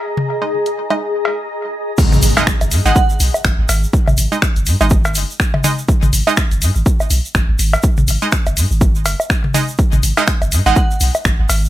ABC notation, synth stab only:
X:1
M:4/4
L:1/16
Q:"Swing 16ths" 1/4=123
K:G#m
V:1 name="Synth stab"
z3 [G,Dd] z3 [G,Dd] z8 | z3 [G,Dd] z3 [G,Dd] z8 | z3 [G,Dd] z3 [G,Dd] z6 [G,Dd] z | z3 [G,Dd] z12 |
z3 [G,Dd] z8 z2 [G,Dd] z | z3 [G,Dd] z3 [G,Dd] z8 |]